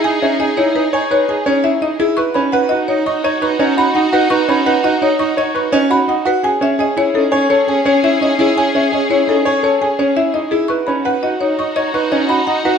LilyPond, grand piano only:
\new Staff \with { instrumentName = "Grand piano" } { \time 6/4 \key b \major \tempo 4 = 169 gis'8 cis'8 gis'8 e'8 dis'8 cis''8 b'8 gis'8 cis'8 e'8 dis'8 e'8 | b'8 cis'8 b'8 fis'8 dis'8 dis''8 cis''8 b'8 cis'8 fis'8 dis'8 fis'8 | b'8 cis'8 b'8 fis'8 dis'8 dis''8 cis''8 b'8 cis'8 fis'8 dis'8 fis'8 | gis'8 cis'8 gis'8 e'8 dis'8 cis''8 a'8 gis'8 cis'8 e'8 dis'8 e'8 |
gis'8 cis'8 gis'8 e'8 dis'8 cis''8 a'8 gis'8 cis'8 e'8 dis'8 e'8 | b'8 cis'8 b'8 fis'8 dis'8 dis''8 cis''8 b'8 cis'8 fis'8 dis'8 fis'8 | }